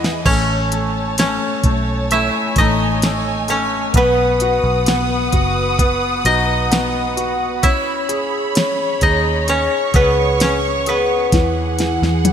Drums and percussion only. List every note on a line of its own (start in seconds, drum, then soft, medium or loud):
0.04 snare medium
0.26 kick medium
0.26 crash medium
0.72 closed hi-hat medium
1.18 snare loud
1.18 closed hi-hat loud
1.64 kick medium
1.64 closed hi-hat medium
2.11 closed hi-hat medium
2.56 kick medium
2.56 closed hi-hat medium
3.02 snare loud
3.02 closed hi-hat medium
3.48 closed hi-hat medium
3.94 kick loud
3.94 closed hi-hat medium
4.40 closed hi-hat medium
4.86 snare loud
4.86 closed hi-hat medium
5.32 kick medium
5.32 closed hi-hat medium
5.79 kick medium
5.79 closed hi-hat medium
6.25 closed hi-hat medium
6.72 snare loud
6.72 closed hi-hat medium
7.17 closed hi-hat medium
7.63 kick loud
7.63 closed hi-hat medium
8.09 closed hi-hat medium
8.55 snare loud
8.55 closed hi-hat medium
9.01 kick medium
9.01 closed hi-hat medium
9.48 closed hi-hat medium
9.94 kick medium
9.94 closed hi-hat medium
10.40 snare loud
10.40 closed hi-hat medium
10.86 closed hi-hat medium
11.32 kick loud
11.32 snare medium
11.32 closed hi-hat medium
11.79 snare medium
11.79 closed hi-hat medium
12.03 snare medium
12.25 closed hi-hat medium
12.25 high tom medium